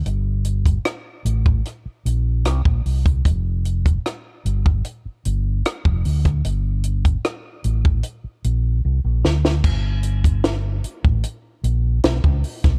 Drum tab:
CC |----------------|----------------|----------------|x---------------|
HH |x-xxx-x-x-x-x-ox|x-xxx-x-x-x-x-ox|x-xxx-x-x-x-----|--xxx-x-x-x-x-ox|
SD |----r---r---r---|----r-------r--r|----r---------oo|----o-------o--o|
BD |---o---o-----o-o|o--o---o-----o-o|---o---o--------|o--o---o-----o-o|